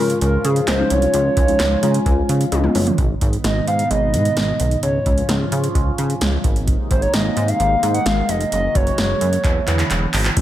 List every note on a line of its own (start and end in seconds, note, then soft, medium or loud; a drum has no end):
0.00 2.95 G#2 medium
0.00 0.14 C#3 loud
0.00 2.95 C#3 medium
0.00 2.95 F3 medium
0.00 0.56 G#3 medium
0.00 0.56 C#4 medium
0.00 2.94 C#4 medium
0.00 0.56 F4 medium
0.00 2.95 F4 medium
0.00 0.18 A#4 loud
0.10 closed hi-hat medium
0.21 0.38 C#2 loud
0.21 0.46 A#4 loud
0.21 closed hi-hat medium
0.44 0.61 C#3 loud
0.44 0.67 G#4 medium
0.44 closed hi-hat medium
0.56 closed hi-hat medium
0.67 0.84 C#2 loud
0.67 0.92 C5 loud
0.67 snare loud
0.67 clap loud
0.67 closed hi-hat medium
0.79 1.04 G#3 medium
0.79 1.04 C#4 medium
0.79 1.04 D#4 medium
0.90 1.07 C2 medium
0.90 2.52 C#5 loud
0.90 closed hi-hat medium
1.02 closed hi-hat soft
1.14 1.30 C#2 loud
1.14 1.38 G#3 medium
1.14 1.38 C#4 medium
1.14 1.38 F4 medium
1.14 closed hi-hat medium
1.37 1.53 C#2 loud
1.37 kick medium
1.37 closed hi-hat medium
1.48 1.73 G#3 medium
1.48 1.73 C#4 medium
1.48 1.73 D#4 medium
1.48 closed hi-hat soft
1.60 1.76 C#2 medium
1.60 snare loud
1.60 clap medium
1.60 closed hi-hat medium
1.83 1.99 C#3 loud
1.83 2.40 G#3 medium
1.83 2.40 C#4 medium
1.83 2.40 F4 loud
1.83 1.90 A#5 medium
1.83 closed hi-hat medium
1.91 2.05 G#5 medium
1.91 closed hi-hat medium
2.06 2.22 C#2 loud
2.06 2.27 G#5 medium
2.06 kick medium
2.06 closed hi-hat medium
2.29 2.45 C#3 loud
2.29 2.51 F5 medium
2.29 closed hi-hat medium
2.41 closed hi-hat medium
2.52 2.68 C#2 loud
2.52 2.74 D#5 medium
2.52 closed hi-hat medium
2.52 high tom medium
2.64 2.88 G#3 medium
2.64 2.88 C#4 medium
2.64 2.88 F4 loud
2.64 mid tom medium
2.75 2.91 F#1 medium
2.75 2.97 C#5 medium
2.75 mid tom medium
2.75 open hi-hat medium
2.87 closed hi-hat soft
2.87 floor tom loud
2.98 3.14 G#1 loud
2.98 6.41 G#2 medium
2.98 4.81 B2 medium
2.98 4.81 D#3 medium
2.98 4.81 B3 medium
2.98 4.81 D#4 medium
2.98 kick loud
2.98 closed hi-hat medium
3.21 3.37 G#1 loud
3.21 kick medium
3.21 closed hi-hat medium
3.33 closed hi-hat soft
3.44 3.61 G#1 loud
3.44 3.66 D#5 loud
3.44 snare loud
3.44 closed hi-hat medium
3.68 3.84 G#2 loud
3.68 3.89 F5 loud
3.68 closed hi-hat medium
3.79 closed hi-hat medium
3.91 4.15 G#1 loud
3.91 4.79 D#5 loud
3.91 closed hi-hat medium
4.14 4.30 G#2 loud
4.14 closed hi-hat medium
4.25 closed hi-hat soft
4.37 4.53 G#1 loud
4.37 snare loud
4.37 closed hi-hat medium
4.60 4.76 B1 medium
4.60 closed hi-hat medium
4.71 closed hi-hat soft
4.83 4.99 C#2 loud
4.83 6.43 C#3 medium
4.83 6.43 F3 medium
4.83 6.43 C#4 medium
4.83 6.43 F4 medium
4.83 5.48 C#5 medium
4.83 closed hi-hat medium
5.06 5.22 C#2 loud
5.06 kick medium
5.06 closed hi-hat medium
5.18 closed hi-hat soft
5.29 5.45 C#2 loud
5.29 snare loud
5.29 closed hi-hat medium
5.52 5.68 C#3 loud
5.52 closed hi-hat medium
5.64 closed hi-hat medium
5.75 5.91 C#2 loud
5.75 kick medium
5.75 closed hi-hat medium
5.98 6.14 C#3 loud
5.98 closed hi-hat medium
6.10 closed hi-hat soft
6.21 6.37 C#2 loud
6.21 snare loud
6.21 closed hi-hat medium
6.44 6.77 G#1 loud
6.44 8.50 C3 medium
6.44 8.50 D#3 medium
6.44 10.33 G#3 medium
6.44 9.41 A#3 medium
6.44 8.50 D#4 medium
6.44 kick loud
6.44 closed hi-hat medium
6.56 closed hi-hat soft
6.67 kick loud
6.67 closed hi-hat medium
6.91 7.07 G#1 loud
6.91 7.01 C5 medium
6.91 kick medium
6.91 closed hi-hat medium
7.02 7.13 C#5 medium
7.02 closed hi-hat soft
7.14 7.30 G#1 loud
7.14 7.50 D#5 loud
7.14 snare loud
7.14 closed hi-hat medium
7.37 7.53 G#2 loud
7.37 closed hi-hat medium
7.48 7.94 F5 loud
7.48 closed hi-hat medium
7.60 7.76 G#1 loud
7.60 closed hi-hat medium
7.83 7.99 G#2 loud
7.83 closed hi-hat medium
7.94 8.05 F#5 loud
7.94 closed hi-hat soft
8.06 8.22 G#1 loud
8.06 8.30 F5 loud
8.06 snare loud
8.06 closed hi-hat medium
8.29 8.45 F1 medium
8.29 8.51 D#5 medium
8.29 closed hi-hat medium
8.41 closed hi-hat soft
8.52 8.68 F#1 loud
8.52 9.43 C#3 medium
8.52 9.43 F#3 medium
8.52 9.43 F#4 medium
8.52 8.77 D#5 loud
8.52 closed hi-hat medium
8.75 8.91 F#1 loud
8.75 10.14 C#5 loud
8.75 kick medium
8.75 closed hi-hat medium
8.87 closed hi-hat soft
8.98 9.14 F#1 loud
8.98 snare loud
8.98 closed hi-hat medium
9.21 9.37 F#2 loud
9.21 closed hi-hat medium
9.33 closed hi-hat medium
9.44 9.60 E1 loud
9.44 10.36 D3 medium
9.44 10.36 E3 medium
9.44 10.36 B3 medium
9.44 10.36 E4 medium
9.44 kick medium
9.44 clap medium
9.44 closed hi-hat medium
9.67 9.84 E2 loud
9.67 clap medium
9.67 closed hi-hat medium
9.79 clap medium
9.79 closed hi-hat soft
9.90 10.07 E1 loud
9.90 clap medium
9.90 closed hi-hat medium
10.13 10.30 G#1 loud
10.13 clap loud
10.13 open hi-hat medium
10.25 clap medium
10.25 closed hi-hat soft
10.37 10.41 A1 loud
10.37 10.41 E3 medium
10.37 10.41 A3 medium
10.37 10.41 C#4 medium
10.37 10.41 E4 medium
10.37 10.41 E4 loud
10.37 kick loud
10.37 closed hi-hat medium
10.37 crash loud